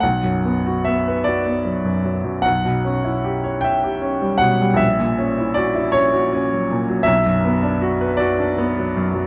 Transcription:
<<
  \new Staff \with { instrumentName = "Grand piano" } { \time 6/8 \key b \minor \tempo 4. = 52 fis''4 e''8 d''4. | fis''4. g''4 fis''8 | e''4 d''8 cis''4. | e''4. d''8 r4 | }
  \new Staff \with { instrumentName = "Grand piano" } { \time 6/8 \key b \minor b,,16 fis,16 b16 fis'16 b16 b'16 fis'16 b16 fis16 fis,16 fis16 fis,16 | b,,16 b,16 cis'16 e'16 g'16 cis''16 e''16 g'16 cis'16 g16 b,16 g16 | ais,,16 ais,16 cis'16 e'16 fis'16 e'16 cis'16 fis'16 cis'16 fis16 ais,16 fis16 | b,,16 fis,16 b16 d'16 fis'16 b'16 fis'16 d'16 b16 fis16 fis,16 fis16 | }
>>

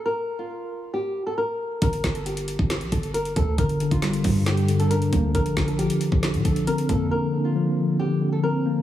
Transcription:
<<
  \new Staff \with { instrumentName = "Nylon-string guitar" } { \time 4/4 \key g \minor \tempo 4 = 136 bes'8. f'4~ f'16 g'8. a'16 bes'4 | bes'8. a'16 g'4. a'8 bes'8 a'8 | bes'8. f'4~ f'16 g'8. a'16 bes'4 | bes'8. a'16 g'4. a'8 bes'8 a'8 |
bes'8. f'4~ f'16 g'8. a'16 bes'4 | }
  \new Staff \with { instrumentName = "Tine electric piano" } { \clef bass \time 4/4 \key g \minor r1 | r1 | d8 d8 g4 d8 d8 d'8 bes8 | d8 d8 f4 d8 d8 c'8 bes8 |
d8 d8 f4 d8 d8 c'8 bes8 | }
  \new Staff \with { instrumentName = "808-style bass" } { \clef bass \time 4/4 \key g \minor r1 | g,,8 g,,4~ g,,16 g,,8 bes,,16 g,,4 d,8 | g,,8. g,,8. g,2 d,8 | bes,,8 bes,,8. r8 bes,,8 bes,16 bes,,8 r8 f,8 |
r1 | }
  \new DrumStaff \with { instrumentName = "Drums" } \drummode { \time 4/4 r4 r4 r4 r4 | <hh bd>16 hh16 <hc hh bd sn>16 hh16 hh16 hh16 hh16 bd16 <hc hh sn>16 hh16 <hh bd>16 hh16 hh16 hh16 <hh bd>8 | <hh bd>16 hh16 hh16 <hh bd>16 <hc hh sn>16 hh16 <hho bd>8 <hc hh sn>16 hh16 hh16 hh16 hh16 hh16 <hh bd>8 | <hh bd>16 hh16 <hc hh bd sn>16 hh16 hh16 hh16 hh16 bd16 <hc hh sn>16 hh16 <hh bd>16 hh16 hh16 hh16 <hh bd>8 |
r4 r4 r4 r4 | }
>>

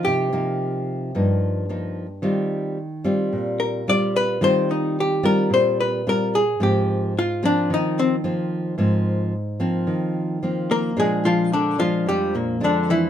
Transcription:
<<
  \new Staff \with { instrumentName = "Hollow-body jazz guitar" } { \time 4/4 \key ees \major \tempo 4 = 110 g'2. r4 | r2 r8 bes'8 d''8 b'8 | c''8 ees'8 g'8 bes'8 c''8 b'8 bes'8 aes'8 | g'4 f'8 d'8 ees'8 c'8 r4 |
r2. r8 <bes bes'>8 | <aes aes'>8 <f f'>8 <d d'>8 <f f'>8 <g g'>8 <bes, bes>8 <d d'>8 <e e'>8 | }
  \new Staff \with { instrumentName = "Nylon-string guitar" } { \time 4/4 \key ees \major << { <f bes ees'>8 <f bes ees'>4. <f bes ees'>4 <f bes ees'>8 r8 | <g c' f'>4 r8 <g c' f'>4. <g c' f'>4 | <g c' f'>4. <g c' f'>4. <g c' f'>8 r8 | <f bes c'>4 r8 <f bes c'>4. <f bes c'>4 |
<f bes c'>4 r8 <f bes c'>4. <f bes c'>4 | <f aes d'>4. <f aes d'>4. <f aes d'>4 | } \\ { c2 g,2 | ees2 bes,2 | ees2 bes,2 | aes,2 ees2 |
aes,2 ees2 | bes,2 f,2 | } >> }
>>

